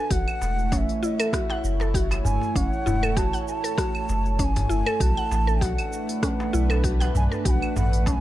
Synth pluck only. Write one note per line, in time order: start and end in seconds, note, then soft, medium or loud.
0.00 0.10 A4 medium
0.10 0.71 F#4 medium
0.72 0.82 C#4 medium
1.03 1.18 E4 medium
1.20 1.32 A4 loud
1.34 1.43 F#4 loud
1.50 1.58 F#5 loud
1.81 1.94 A4 medium
1.95 2.54 F#4 medium
2.56 2.65 C#4 medium
2.86 3.01 E4 medium
3.03 3.16 A4 loud
3.17 3.26 F#4 loud
3.33 3.41 F#5 medium
3.64 3.77 A4 medium
3.78 4.38 F#4 medium
4.39 4.49 C#4 medium
4.69 4.85 E4 medium
4.86 4.99 A4 loud
5.01 5.10 F#4 loud
5.17 5.25 F#5 loud
5.47 5.61 A4 medium
5.61 6.21 F#4 medium
6.23 6.32 C#4 medium
6.53 6.69 E4 medium
6.70 6.83 A4 loud
6.84 6.94 F#4 loud
7.00 7.09 F#5 loud
7.32 7.45 A4 medium
7.45 8.05 F#4 medium
8.07 8.16 C#4 medium